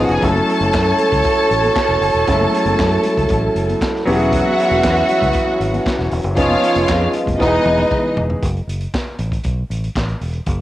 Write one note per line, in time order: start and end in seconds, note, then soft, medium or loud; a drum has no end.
0.00 0.21 F3 medium
0.00 0.24 F3 medium
0.00 0.21 B3 medium
0.00 0.24 B3 medium
0.00 0.23 C#4 medium
0.00 0.21 D#4 medium
0.00 0.24 D#4 medium
0.00 0.24 G#4 medium
0.04 0.13 F#4 medium
0.04 0.14 F#5 medium
0.09 0.18 F1 medium
0.09 closed hi-hat soft
0.14 0.22 G#4 medium
0.14 0.22 G#5 loud
0.21 0.40 F#1 loud
0.21 2.23 F#3 medium
0.21 4.03 F#3 medium
0.21 2.23 A3 medium
0.21 2.24 C#4 medium
0.21 3.78 C#4 medium
0.21 4.03 E4 medium
0.21 2.24 E4 medium
0.21 4.03 A4 medium
0.21 3.77 A4 loud
0.21 3.78 A4 medium
0.21 2.24 A4 medium
0.21 3.78 C#5 loud
0.21 3.77 A5 loud
0.21 kick loud
0.21 closed hi-hat medium
0.21 muted conga soft
0.35 closed hi-hat soft
0.35 muted conga soft
0.35 high conga medium
0.50 closed hi-hat medium
0.60 0.69 F#1 medium
0.60 closed hi-hat soft
0.60 high conga medium
0.74 0.91 F#2 loud
0.74 kick loud
0.74 snare loud
0.74 clap medium
0.86 closed hi-hat soft
0.86 muted conga soft
0.98 closed hi-hat medium
0.98 low conga medium
1.12 1.21 C#2 medium
1.12 kick loud
1.12 closed hi-hat medium
1.12 low conga medium
1.24 kick loud
1.24 closed hi-hat medium
1.51 1.68 A1 medium
1.51 closed hi-hat medium
1.63 closed hi-hat soft
1.63 high conga medium
1.76 kick loud
1.76 snare loud
1.76 clap medium
1.89 1.98 E1 medium
1.89 snare soft
1.89 muted conga soft
2.01 2.10 F#1 medium
2.01 open hi-hat medium
2.14 2.23 E1 medium
2.14 closed hi-hat soft
2.27 2.45 F#1 loud
2.27 4.03 F#3 medium
2.27 2.34 G#3 medium
2.27 4.04 C#4 medium
2.27 4.04 E4 medium
2.27 4.04 A4 medium
2.27 kick loud
2.27 closed hi-hat medium
2.27 muted conga soft
2.34 4.07 A3 medium
2.41 muted conga soft
2.41 high conga medium
2.54 closed hi-hat medium
2.65 2.74 F#1 medium
2.65 closed hi-hat soft
2.65 high conga medium
2.79 2.96 F#2 loud
2.79 kick loud
2.79 snare loud
2.79 clap medium
2.91 closed hi-hat soft
3.03 closed hi-hat medium
3.03 low conga medium
3.17 3.26 C#2 medium
3.17 kick loud
3.17 closed hi-hat medium
3.17 low conga medium
3.29 3.48 A1 loud
3.29 kick loud
3.29 closed hi-hat medium
3.55 3.73 F#1 medium
3.55 closed hi-hat medium
3.69 closed hi-hat soft
3.69 high conga medium
3.81 kick loud
3.81 snare loud
3.81 clap medium
3.96 snare soft
4.05 4.42 E1 medium
4.05 6.35 E3 medium
4.05 6.07 F#3 medium
4.05 6.08 B3 medium
4.05 6.35 C#4 medium
4.05 6.08 C#4 medium
4.05 6.08 E4 medium
4.05 6.07 F#4 loud
4.05 6.35 F#4 medium
4.05 4.14 G4 medium
4.05 6.08 B4 medium
4.05 6.08 C#5 medium
4.05 6.08 E5 loud
4.05 6.08 F#5 loud
4.05 open hi-hat medium
4.15 6.12 G#4 medium
4.20 closed hi-hat soft
4.33 kick loud
4.33 closed hi-hat medium
4.33 muted conga soft
4.45 high conga medium
4.60 closed hi-hat medium
4.70 4.80 E1 loud
4.70 closed hi-hat soft
4.70 high conga medium
4.84 5.01 E2 loud
4.84 kick loud
4.84 snare loud
4.84 clap loud
4.96 closed hi-hat soft
5.08 closed hi-hat medium
5.08 low conga medium
5.21 5.31 C#2 medium
5.21 kick medium
5.21 closed hi-hat medium
5.21 low conga medium
5.33 kick loud
5.33 closed hi-hat medium
5.33 muted conga soft
5.47 muted conga soft
5.60 5.78 G#1 medium
5.60 closed hi-hat medium
5.73 closed hi-hat soft
5.73 high conga medium
5.86 kick loud
5.86 snare loud
5.86 clap medium
5.99 6.08 E1 medium
5.99 snare soft
6.11 6.21 E1 medium
6.11 open hi-hat medium
6.23 6.37 F#1 medium
6.23 closed hi-hat soft
6.36 6.55 F1 loud
6.36 7.37 F3 medium
6.36 7.39 F3 medium
6.36 7.37 B3 medium
6.36 8.40 B3 medium
6.36 7.38 C#4 medium
6.36 7.38 D#4 medium
6.36 7.12 F4 loud
6.36 7.13 F4 medium
6.36 7.13 G#4 medium
6.36 8.40 G#4 medium
6.36 7.38 G#4 medium
6.36 7.13 C#5 loud
6.36 8.40 D#5 medium
6.36 7.12 F5 loud
6.36 kick loud
6.36 closed hi-hat medium
6.50 closed hi-hat soft
6.50 muted conga soft
6.50 high conga medium
6.63 closed hi-hat medium
6.75 6.85 F1 loud
6.75 closed hi-hat medium
6.75 high conga medium
6.88 7.06 F2 loud
6.88 kick loud
6.88 snare loud
6.88 clap loud
6.88 muted conga soft
7.13 closed hi-hat medium
7.13 low conga medium
7.26 7.36 F1 loud
7.26 kick medium
7.26 closed hi-hat medium
7.26 low conga medium
7.38 7.57 E1 loud
7.38 8.39 E3 medium
7.38 8.42 E3 medium
7.38 8.40 G#3 medium
7.38 8.40 B3 medium
7.38 8.15 D#4 loud
7.38 8.40 D#4 medium
7.38 8.15 E4 medium
7.38 7.47 F#4 medium
7.38 8.15 G#4 medium
7.38 8.15 B4 medium
7.38 8.15 D#5 loud
7.38 kick loud
7.38 snare medium
7.47 8.44 G#4 medium
7.65 7.83 E1 medium
7.65 high tom medium
7.78 high tom medium
7.78 high conga medium
7.91 kick loud
7.91 mid tom medium
8.03 muted conga soft
8.17 8.34 E1 medium
8.17 floor tom medium
8.30 floor tom medium
8.42 8.60 F#1 loud
8.42 kick loud
8.42 closed hi-hat medium
8.57 closed hi-hat soft
8.67 8.85 F#1 medium
8.67 closed hi-hat medium
8.81 closed hi-hat soft
8.94 kick loud
8.94 snare loud
8.94 clap medium
9.19 9.36 A1 medium
9.19 closed hi-hat medium
9.32 kick medium
9.32 closed hi-hat medium
9.44 9.62 B1 medium
9.44 kick loud
9.44 closed hi-hat medium
9.70 9.88 A1 medium
9.70 closed hi-hat medium
9.84 closed hi-hat soft
9.96 10.13 A1 medium
9.96 kick loud
9.96 snare loud
9.96 clap medium
10.09 closed hi-hat soft
10.21 10.39 E1 medium
10.21 open hi-hat medium
10.33 closed hi-hat soft
10.46 10.61 F#1 loud
10.46 kick loud
10.46 closed hi-hat medium